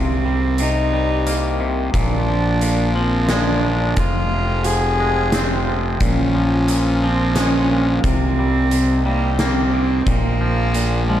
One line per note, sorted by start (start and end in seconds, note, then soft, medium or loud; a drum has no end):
0.00 1.90 C2 medium
0.00 0.59 C3 medium
0.00 0.63 C4 medium
0.00 1.93 C4 medium
0.00 1.93 G4 medium
0.00 3.94 A#4 medium
0.00 1.93 D#5 medium
0.25 0.92 G3 soft
0.58 1.59 C3 medium
0.58 1.62 D#4 medium
0.58 closed hi-hat soft
0.93 1.95 G3 medium
1.27 1.95 A#3 medium
1.27 closed hi-hat medium
1.60 1.94 C3 medium
1.93 3.94 A#1 medium
1.93 2.61 A#2 medium
1.93 3.96 D4 medium
1.93 2.93 D4 medium
1.93 5.97 G#4 medium
1.93 3.96 F5 medium
1.93 kick medium
1.93 closed hi-hat soft
2.29 2.95 F3 soft
2.61 3.63 A#2 medium
2.61 closed hi-hat soft
2.95 4.66 F3 medium
2.95 3.33 C4 medium
3.29 5.00 G#3 medium
3.29 4.01 D4 medium
3.29 snare medium
3.29 closed hi-hat soft
3.64 3.98 A#2 soft
3.97 5.97 F1 medium
3.97 5.67 F2 medium
3.97 5.99 F4 medium
3.97 4.68 F4 medium
3.97 5.99 C5 medium
3.97 5.99 G5 medium
3.97 kick medium
3.97 closed hi-hat soft
4.33 6.02 C3 soft
4.64 5.66 F3 medium
4.64 5.68 G#4 medium
4.64 closed hi-hat soft
5.00 6.02 G#3 medium
5.32 6.02 C4 medium
5.32 snare medium
5.32 closed hi-hat medium
5.68 6.01 F3 soft
6.00 8.00 A#1 medium
6.00 6.68 A#2 medium
6.00 8.02 F4 medium
6.00 11.20 A#4 medium
6.00 8.03 F5 medium
6.00 8.03 G#5 medium
6.00 kick medium
6.00 closed hi-hat soft
6.05 7.07 C#4 medium
6.35 7.02 F3 soft
6.68 7.70 A#2 medium
6.68 closed hi-hat soft
7.03 8.05 F3 medium
7.03 7.37 C4 medium
7.36 8.05 G#3 soft
7.36 8.01 C#4 medium
7.36 snare medium
7.36 closed hi-hat medium
7.71 8.05 A#2 medium
8.04 10.03 C2 medium
8.04 8.71 C3 medium
8.04 9.02 C4 medium
8.04 10.05 D#4 medium
8.04 10.05 C5 medium
8.04 10.05 G5 medium
8.04 kick medium
8.04 closed hi-hat soft
8.39 9.05 G3 soft
8.71 9.72 C3 medium
8.71 closed hi-hat soft
9.06 10.07 G3 medium
9.06 9.38 A#3 medium
9.39 10.07 A#3 soft
9.39 10.10 C4 medium
9.39 snare medium
9.39 closed hi-hat soft
9.73 10.06 C3 medium
10.06 11.20 A#1 medium
10.06 10.74 A#2 medium
10.06 11.09 A#3 medium
10.06 11.20 F4 medium
10.06 11.20 D5 medium
10.06 11.20 G#5 medium
10.06 kick medium
10.06 closed hi-hat soft
10.41 11.09 F3 soft
10.74 11.20 A#2 medium
10.74 closed hi-hat soft
11.09 11.20 F3 medium
11.09 11.20 G#3 medium